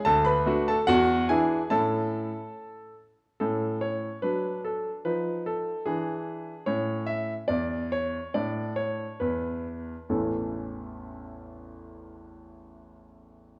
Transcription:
<<
  \new Staff \with { instrumentName = "Grand piano" } { \time 2/4 \key a \major \tempo 4 = 72 << { <a' a''>16 <b' b''>8 <a' a''>16 <fis' fis''>8 <gis' gis''>8 | <a' a''>4. r8 | a'8 cis''8 b'8 a'8 | b'8 a'8 gis'4 |
cis''8 e''8 d''8 cis''8 | d''8 cis''8 b'4 | <a,, e, e a cis' e' a'>2~ | <a,, e, e a cis' e' a'>2 | } \\ { r2 | r2 | cis'4 d'4 | ees'4 d'4 |
cis'2 | d'2 | r2 | r2 | } >> }
  \new Staff \with { instrumentName = "Grand piano" } { \clef bass \time 2/4 \key a \major d,8 <a d' fis'>8 e,8 <e d' e'>8 | <a, cis' e'>4 r4 | a,4 fis4 | f4 e4 |
a,4 e,4 | a,4 e,4 | r2 | r2 | }
>>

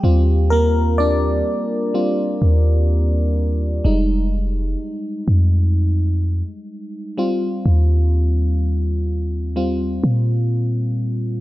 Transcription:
<<
  \new Staff \with { instrumentName = "FM electric piano" } { \time 4/4 \key ees \major \tempo 4 = 63 << { <g g'>8 <bes bes'>8 <d' d''>4. r4. | r1 | r1 | } \\ { <g c' f'>4. r8 <g c' f'>8 r4. | <g aes ees'>4. r2 <g c' f'>8~ | <g c' f'>4 r4 <g c' f'>8 r4. | } >> }
  \new Staff \with { instrumentName = "808-style bass" } { \clef bass \time 4/4 \key ees \major ees,4. r4 ees,4. | f,,4 r8 f,4~ f,16 r4 r16 | ees,2~ ees,8 bes,4. | }
>>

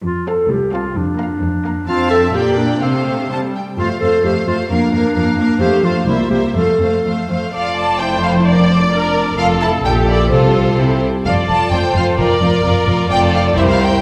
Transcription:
<<
  \new Staff \with { instrumentName = "Violin section" } { \time 2/4 \key f \major \tempo 4 = 129 r8 a''8 r8 a''8 | r8 bes''8 r8 bes''8 | a''4 g''4 | f''4 a''8 g''8 |
f''8 f''8 f''8 f''8 | f''8 f''8 f''8 f''8 | f''8 f''8 e''8 e''8 | f''8 f''8 f''8 f''8 |
f''8 a''8 g''8 f''8 | d''2 | f''8 a''8 g''8 d''8 | c''4. r8 |
f''8 a''8 g''8 f''8 | d''2 | g''8 f''8 e''16 f''16 g''8 | }
  \new Staff \with { instrumentName = "Violin section" } { \time 2/4 \key f \major << { r8 f''8 r8 f''8 | r8 f''8 r8 f''8 | f''8 e''8 d''4 | c''4 c''8 r8 |
c''8 c''8 c''8 c''8 | bes'8 bes'8 bes'8 bes'8 | c''8 c''8 c''8 c''8 | c''8 c''8 c''8 c''8 |
a'2 | bes'8 c''8 bes'4 | a'4 g'4 | a'4 g'8 r8 |
a'8 a'8 a'8 a'8 | bes'8 bes'8 bes'8 bes'8 | a'4 bes'4 | } \\ { r2 | r2 | r2 | r2 |
r2 | r2 | r2 | r2 |
f'4 e'4 | d'4 d'4 | f'8 e'8 d'8 e'8 | f'4 e'8 r8 |
f'8 f'8 f'8 f'8 | f'8 f'8 f'8 f'8 | f'4 e'4 | } >> }
  \new Staff \with { instrumentName = "Clarinet" } { \time 2/4 \key f \major f'8 a'8 g'8 f'8 | d'2 | f'8 a'8 g'8 d'8 | c'4. r8 |
f'8 a'8 g'8 f'8 | d'2 | g'8 f'8 e'16 f'16 g'8 | a'4 r4 |
r2 | r2 | r2 | r2 |
r2 | r2 | r2 | }
  \new Staff \with { instrumentName = "Viola section" } { \time 2/4 \key f \major r8 c'8 r8 c'8 | r8 bes8 r8 bes8 | c'4 bes4 | a4 g8 r8 |
a8 a8 a8 a8 | bes8 bes8 bes8 bes8 | a8 a8 bes8 bes8 | a8 a8 a8 a8 |
d''4 c''4 | d''4 bes'4 | a'2 | a'4. r8 |
d''4 c''4 | bes'4 bes'4 | d''4 c''4 | }
  \new Staff \with { instrumentName = "Cello section" } { \clef bass \time 2/4 \key f \major f,4 c,4 | f,4 f,4 | f,4 bes,4 | c4 c8 r8 |
f,8 f,8 f,8 f,8 | f,8 f,8 f,8 f,8 | f,8 f,8 c,8 c,8 | f,8 f,8 f,8 f,8 |
f,2~ | f,2 | f,4 bes,4 | c4 c8 r8 |
f,8 f,8 f,8 f,8 | f,8 f,8 f,8 f,8 | f,4 c,4 | }
  \new Staff \with { instrumentName = "Double bass section" } { \clef bass \time 2/4 \key f \major r2 | r2 | r2 | r2 |
r2 | r2 | r2 | r2 |
f,,2~ | f,,2 | f,,4 bes,,4 | c,4 c,8 r8 |
f,,8 f,,8 f,,8 f,,8 | f,,8 f,,8 f,,8 f,,8 | f,,4 c,4 | }
>>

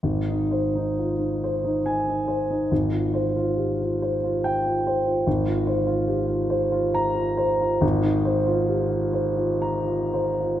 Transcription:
\new Staff \with { instrumentName = "Grand piano" } { \time 3/4 \key aes \major \tempo 4 = 68 << { r2 aes''8 r8 | r2 g''8 r8 | r2 bes''8 r8 | r2. | } \\ { aes,,16 ees'16 c''16 ees'16 f'16 ees'16 c''16 ees'8 ees'16 c''16 ees'16 | aes,,16 f'16 c''16 f'16 g'16 f'16 c''16 f'8 f'16 c''16 f'16 | aes,,16 f'16 c''16 f'16 g'16 f'16 c''16 f'8 f'16 c''16 f'16 | aes,,16 ees'16 c''16 f'16 g'16 f'16 c''16 f'16 bes''16 f'16 c''16 f'16 | } >> }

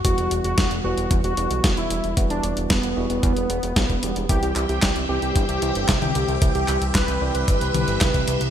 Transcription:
<<
  \new Staff \with { instrumentName = "String machine" } { \time 4/4 \key e \minor \tempo 4 = 113 r1 | r1 | <c' g' e'' g''>1~ | <c' g' e'' g''>1 | }
  \new Staff \with { instrumentName = "Analog synth lead" } { \time 4/4 \key e \minor fis'8 r16 fis'8 r16 fis'8 r16 fis'8. r16 e'8. | r16 d'8 r16 b8 r16 b2 r16 | g'8 r16 g'8 r16 g'8 r16 g'8. r16 g'8. | r16 g'8 r16 b'8 r16 b'2 r16 | }
  \new Staff \with { instrumentName = "Tine electric piano" } { \time 4/4 \key e \minor <e g b fis'>4. <e g b fis'>4 <e g b fis'>4. | <e g b fis'>4. <e g b fis'>4 r4 <e g b g'>8 | <e g c' g'>4. <e g c' g'>4 <e g c' g'>4. | <e g c' g'>4. <e g c' g'>4 <e g c' g'>4. | }
  \new Staff \with { instrumentName = "Analog synth bass" } { \clef bass \time 4/4 \key e \minor e,,16 e,,16 e,,16 e,,16 e,,16 e,,16 e,,16 e,,16 e,16 e,,16 e,,16 b,,16 e,,16 e,,16 e,,16 e,,16 | e,,16 e,,16 e,,16 e,,16 e,,16 e,,16 e,,16 e,,16 e,16 e,,16 e,,16 e,,16 b,,16 e,,16 e,,16 e,,16 | c,16 c,16 c,16 c,16 c,16 c,16 c,16 c,16 g,,16 c,16 c,16 g,,16 c,16 c,16 c,16 c,16 | c,16 c,16 c,16 c,16 c,16 c,16 c,16 c,16 g,,16 c,16 c,16 g,,16 c,16 c,16 c,16 c,16 | }
  \new DrumStaff \with { instrumentName = "Drums" } \drummode { \time 4/4 <hh bd>16 hh16 hh16 hh16 <hh bd sn>16 hh8 hh16 <hh bd>16 hh16 hh16 hh16 <hh bd sn>16 hh16 hh16 hh16 | <hh bd>16 hh16 hh16 hh16 <hh bd sn>16 hh8 hh16 <hh bd>16 hh16 hh16 hh16 <hh bd sn>16 <hh bd>16 hh16 hh16 | <hh bd>16 hh16 <hc hh>16 hh16 <hc hh bd sn>16 hh8 hh16 <hh bd>16 hh16 hh16 hh16 <hc hh bd sn>16 <hh tommh>16 hh16 hh16 | <hh bd>16 hh16 <hc hh>16 hh16 <hc hh bd sn>16 hh8 hh16 <hh bd>16 hh16 <hh tommh>16 hh16 <hc hh bd sn>16 <hh bd>16 hh16 hh16 | }
>>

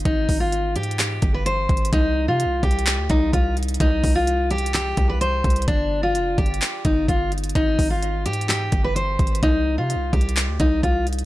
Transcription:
<<
  \new Staff \with { instrumentName = "Steel-string acoustic guitar" } { \time 4/4 \key c \minor \tempo 4 = 128 ees'8. f'8. g'8 g'8. b'16 c''4 | ees'8. f'8. g'4 ees'8 f'8 r8 | ees'8. f'8. g'8 g'8. b'16 c''4 | d'8. f'8. g'4 ees'8 f'8 r8 |
ees'8. f'8. g'8 g'8. b'16 c''4 | ees'8. f'8. g'4 ees'8 f'8 r8 | }
  \new Staff \with { instrumentName = "808-style bass" } { \clef bass \time 4/4 \key c \minor aes,,8 aes,,4 aes,4 g,,4 aes,,8 | c,8. c16. c,16. c,8. d,16 c,8 c,4 | c,8 c,2 c,4 c,8 | g,,4 f,,8 g,,8 r8 g,,8 g,,4 |
aes,,8 aes,,4 aes,4 g,,4 aes,,8 | c,8. c16. c,16. c,8. d,16 c,8 c,4 | }
  \new DrumStaff \with { instrumentName = "Drums" } \drummode { \time 4/4 <hh bd>8 <hho bd>8 \tuplet 3/2 { hh16 r16 r16 hh16 hh16 hh16 } <hc hh>8 <hh bd>8 \tuplet 3/2 { hh16 r16 r16 <hh bd>16 hh16 hh16 } | <hh bd>4 \tuplet 3/2 { hh16 r16 r16 <hh bd>16 hh16 hh16 } <hc hh>8 <hh bd>8 <hh bd>8 hh32 hh32 hh32 hh32 | <hh bd>8 <hho bd>8 \tuplet 3/2 { hh16 r16 r16 hh16 hh16 hh16 } <hc hh>8 <hh bd>8 hh8 <hh bd>32 hh32 hh32 hh32 | <hh bd>4 \tuplet 3/2 { hh16 r16 r16 <hh bd>16 hh16 hh16 } <hc hh>8 <hh bd>8 <hh bd>8 hh32 hh32 hh32 hh32 |
<hh bd>8 <hho bd>8 \tuplet 3/2 { hh16 r16 r16 hh16 hh16 hh16 } <hc hh>8 <hh bd>8 \tuplet 3/2 { hh16 r16 r16 <hh bd>16 hh16 hh16 } | <hh bd>4 \tuplet 3/2 { hh16 r16 r16 <hh bd>16 hh16 hh16 } <hc hh>8 <hh bd>8 <hh bd>8 hh32 hh32 hh16 | }
>>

